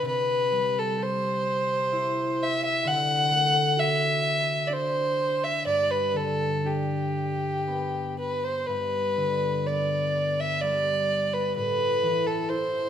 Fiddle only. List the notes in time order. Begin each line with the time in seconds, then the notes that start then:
0.07 B4
0.79 A4
1.02 C5
2.43 E5
2.65 E5
2.87 F#5
3.79 E5
4.67 D5
4.73 C5
5.43 E5
5.67 D5
5.90 B4
6.17 A4
6.66 G4
8.19 B4
8.44 C5
8.66 B4
9.67 D5
10.40 E5
10.61 D5
11.33 B4
11.56 B4
12.26 A4
12.49 C5